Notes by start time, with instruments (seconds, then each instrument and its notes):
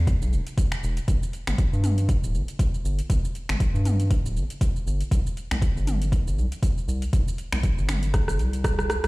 Already playing: analog synth bass E2
0.07 kick, closed hi-hat, shaker
0.22 analog synth bass B1, shaker
0.33 analog synth bass E1, shaker
0.47 closed hi-hat, shaker
0.58 kick, closed hi-hat, shaker
0.72 finger snap, shaker
0.83 analog synth bass E1, shaker
0.97 closed hi-hat, shaker
1.08 analog synth bass G1, kick, closed hi-hat, shaker
1.23 shaker
1.33 closed hi-hat, shaker
1.47 analog synth bass G1, finger snap, closed hi-hat, mid tom, shaker
1.58 kick, closed hi-hat, shaker
1.73 analog synth bass G2, shaker
1.84 closed hi-hat, mid tom, shaker
1.98 closed hi-hat, shaker
2.09 kick, closed hi-hat, shaker
2.23 analog synth bass D1, shaker
2.34 analog synth bass G1, shaker
2.48 closed hi-hat, shaker
2.59 kick, closed hi-hat, shaker
2.74 shaker
2.85 analog synth bass G1, shaker
2.99 closed hi-hat, shaker
3.10 analog synth bass G1, kick, closed hi-hat, shaker
3.25 shaker
3.35 closed hi-hat, shaker
3.49 analog synth bass G1, finger snap, closed hi-hat, mid tom, shaker
3.60 kick, closed hi-hat, shaker
3.74 analog synth bass G2, shaker
3.85 closed hi-hat, mid tom, shaker
4.00 closed hi-hat, shaker
4.11 kick, closed hi-hat, shaker
4.25 analog synth bass D1, shaker
4.36 analog synth bass G1, shaker
4.50 closed hi-hat, shaker
4.61 kick, closed hi-hat, shaker
4.76 shaker
4.87 analog synth bass G1, shaker
5.01 closed hi-hat, shaker
5.11 analog synth bass C2, kick, closed hi-hat, shaker
5.27 shaker
5.37 closed hi-hat, shaker
5.51 analog synth bass C2, finger snap, closed hi-hat, mid tom, shaker
5.62 kick, closed hi-hat, shaker
5.77 analog synth bass G1, shaker
5.87 closed hi-hat, mid tom, shaker
6.02 closed hi-hat, shaker
6.12 kick, closed hi-hat, shaker
6.27 analog synth bass G1, shaker
6.38 analog synth bass C2, shaker
6.52 closed hi-hat, shaker
6.63 kick, closed hi-hat, shaker
6.78 shaker
6.88 analog synth bass C2, shaker
7.02 closed hi-hat, shaker
7.13 analog synth bass C2, kick, closed hi-hat, shaker
7.28 shaker
7.38 closed hi-hat, shaker
7.52 analog synth bass C2, finger snap, closed hi-hat, mid tom, shaker
7.63 kick, closed hi-hat, shaker
7.78 analog synth bass G1, shaker
7.89 finger snap, closed hi-hat, mid tom, shaker
8.03 closed hi-hat, shaker
8.14 kick, cross-stick, closed hi-hat, shaker
8.28 analog synth bass G1, cross-stick, shaker
8.39 analog synth bass C2, closed hi-hat, shaker
8.53 closed hi-hat, shaker
8.64 kick, cross-stick, closed hi-hat, shaker
8.79 cross-stick, shaker
8.90 cross-stick, closed hi-hat, shaker
9.04 analog synth bass C2, cross-stick, closed hi-hat, shaker